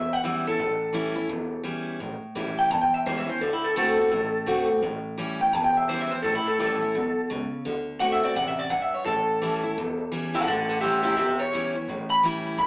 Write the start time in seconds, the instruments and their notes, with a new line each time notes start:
Already playing: upright bass E1, steel-string acoustic guitar E2, clean electric guitar E5
0.13 clean electric guitar F#5
0.24 steel-string acoustic guitar E3 G3 C#4 E4, clean electric guitar E5
0.46 steel-string acoustic guitar C#4 E4, clean electric guitar A4, muted upright bass stroke
0.58 upright bass A1, steel-string acoustic guitar A2
0.93 steel-string acoustic guitar E3 G3 C#4 E4
1.16 steel-string acoustic guitar C#4 E4, muted upright bass stroke
1.28 upright bass E1, steel-string acoustic guitar E2
1.63 steel-string acoustic guitar E3 G3 C#4 E4
1.87 muted upright bass stroke
2.00 upright bass A1, steel-string acoustic guitar A2
2.22 muted upright bass stroke
2.35 upright bass A1, steel-string acoustic guitar E3 G3 C#4 E4
2.57 clean electric guitar G5, muted upright bass stroke
2.70 upright bass B1, steel-string acoustic guitar E2, clean electric guitar A5
2.82 clean electric guitar G5
2.93 clean electric guitar E5, muted upright bass stroke
3.05 upright bass C#2, steel-string acoustic guitar E3 G3 C#4 E4, clean electric guitar C5
3.18 clean electric guitar E5
3.27 steel-string acoustic guitar C#4 E4, clean electric guitar C5, muted upright bass stroke
3.40 upright bass D2, steel-string acoustic guitar D3, clean electric guitar A4
3.53 clean electric guitar E4
3.64 clean electric guitar A4
3.76 steel-string acoustic guitar D3 A3 C4 F#4, clean electric guitar A4
3.98 steel-string acoustic guitar C4 F#4, muted upright bass stroke
4.12 upright bass A1, steel-string acoustic guitar A2
4.46 steel-string acoustic guitar D3 A3 C4 F#4
4.69 steel-string acoustic guitar C4 F#4, muted upright bass stroke
4.82 upright bass A1, steel-string acoustic guitar A2
5.18 steel-string acoustic guitar E3 G3 C#4 E4
5.40 steel-string acoustic guitar C#4 E4, clean electric guitar G5, muted upright bass stroke
5.52 upright bass E1, steel-string acoustic guitar E2, clean electric guitar A5
5.64 clean electric guitar G5
5.77 clean electric guitar E5
5.89 steel-string acoustic guitar E3 G3 C#4 E4, clean electric guitar C5
6.01 clean electric guitar E5
6.10 steel-string acoustic guitar C#4 E4, clean electric guitar C5, muted upright bass stroke
6.22 upright bass A1, steel-string acoustic guitar A2, clean electric guitar A4
6.35 clean electric guitar E4
6.45 clean electric guitar A4, muted upright bass stroke
6.59 upright bass A1, steel-string acoustic guitar E3 G3 C#4 E4, clean electric guitar A4
6.81 steel-string acoustic guitar C#4 E4, muted upright bass stroke
6.94 upright bass B1, steel-string acoustic guitar B2
7.17 muted upright bass stroke
7.30 upright bass C#2, steel-string acoustic guitar C#3
7.52 muted upright bass stroke
7.65 upright bass D2, steel-string acoustic guitar D3
7.99 steel-string acoustic guitar D3 A3 C4 F#4, clean electric guitar F#5
8.12 clean electric guitar E5
8.23 steel-string acoustic guitar C4 F#4, clean electric guitar D5, muted upright bass stroke
8.36 upright bass A1, steel-string acoustic guitar C3, clean electric guitar F#5
8.48 clean electric guitar E5
8.59 clean electric guitar D5
8.70 steel-string acoustic guitar G2, clean electric guitar F#5
8.82 clean electric guitar E5
8.93 clean electric guitar C#5, muted upright bass stroke
9.06 upright bass A1, steel-string acoustic guitar A2, clean electric guitar A4
9.41 steel-string acoustic guitar E3 G3 C#4 E4
9.63 steel-string acoustic guitar C#4 E4, muted upright bass stroke
9.76 upright bass E1, steel-string acoustic guitar E2
10.12 steel-string acoustic guitar E3 G3 C#4 E4
10.34 steel-string acoustic guitar C#4 E4, clean electric guitar A4 F#5, muted upright bass stroke
10.46 upright bass A1, steel-string acoustic guitar A2, clean electric guitar A4 F#5
10.69 clean electric guitar A4 F#5
10.81 steel-string acoustic guitar E3 G3 C#4 E4, clean electric guitar G4 E5
11.03 steel-string acoustic guitar C#4 E4, clean electric guitar G4 E5, muted upright bass stroke
11.17 upright bass E1, steel-string acoustic guitar E2, clean electric guitar G4 E5
11.39 clean electric guitar C#5
11.53 steel-string acoustic guitar E3 G3 C#4 E4
11.75 steel-string acoustic guitar C#4 E4, muted upright bass stroke
11.88 upright bass A1, steel-string acoustic guitar A2
12.10 clean electric guitar B5
12.23 steel-string acoustic guitar E3 G3 C#4 E4
12.46 muted upright bass stroke
12.59 upright bass E1, steel-string acoustic guitar G2, clean electric guitar B5